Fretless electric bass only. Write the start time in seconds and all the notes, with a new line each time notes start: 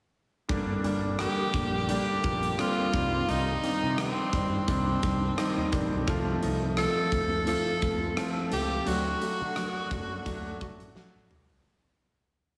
0.49 G1
0.84 G1
1.54 A#1
2.24 A#1
2.94 C2
3.28 C2
3.83 C3
4.33 G2
4.68 C2
5.03 C2
5.57 D#2
5.73 A#1
5.92 B1
6.08 C2
6.42 C2
7.12 D2
7.82 D2
8.52 C#2
8.87 D2
9.41 D3
9.91 F#2
10.26 D2
10.61 muted fretless electric bass stroke
10.80 A1
11.15 A1
11.31 C2
11.50 C#2